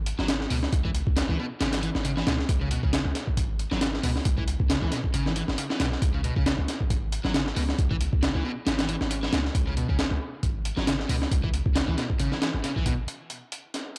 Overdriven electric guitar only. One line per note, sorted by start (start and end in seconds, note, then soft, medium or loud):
0.19 0.27 F#3 medium
0.29 0.34 C#3 medium
0.51 0.57 B2 loud
0.85 0.90 E3 medium
1.17 1.23 C#3 medium
1.29 1.37 E3 medium
1.39 1.45 B2 loud
1.61 1.72 C#3 medium
1.73 1.78 E3 medium
1.83 1.89 E3 medium
2.05 2.11 C#3 medium
2.17 2.25 E3 medium
2.27 2.33 B2 loud
2.61 2.71 C#3 medium
2.71 2.83 B2 medium
2.83 2.92 C#3 medium
2.93 2.99 C#3 medium
3.72 3.79 F#3 medium
3.82 3.87 C#3 medium
4.03 4.09 B2 loud
4.38 4.43 E3 medium
4.70 4.76 C#3 medium
4.82 4.90 E3 medium
4.92 4.98 B2 loud
5.14 5.25 C#3 medium
5.26 5.31 E3 medium
5.36 5.42 E3 medium
5.58 5.64 C#3 medium
5.71 5.78 E3 medium
5.80 5.86 B2 loud
6.15 6.24 C#3 medium
6.24 6.36 B2 medium
6.36 6.45 C#3 medium
6.46 6.52 C#3 medium
7.24 7.32 F#3 medium
7.34 7.40 C#3 medium
7.56 7.62 B2 loud
7.91 7.95 E3 medium
8.22 8.28 C#3 medium
8.35 8.43 E3 medium
8.44 8.50 B2 loud
8.66 8.78 C#3 medium
8.79 8.84 E3 medium
8.89 8.95 E3 medium
9.11 9.17 C#3 medium
9.23 9.31 E3 medium
9.33 9.39 B2 loud
9.67 9.76 C#3 medium
9.77 9.89 B2 medium
9.89 9.98 C#3 medium
9.99 10.05 C#3 medium
10.77 10.85 F#3 medium
10.87 10.93 C#3 medium
11.10 11.15 B2 loud
11.44 11.48 E3 medium
11.75 11.81 C#3 medium
11.88 11.96 E3 medium
11.98 12.04 B2 loud
12.20 12.31 C#3 medium
12.32 12.37 E3 medium
12.42 12.48 E3 medium
12.64 12.70 C#3 medium
12.76 12.84 E3 medium
12.86 12.92 B2 loud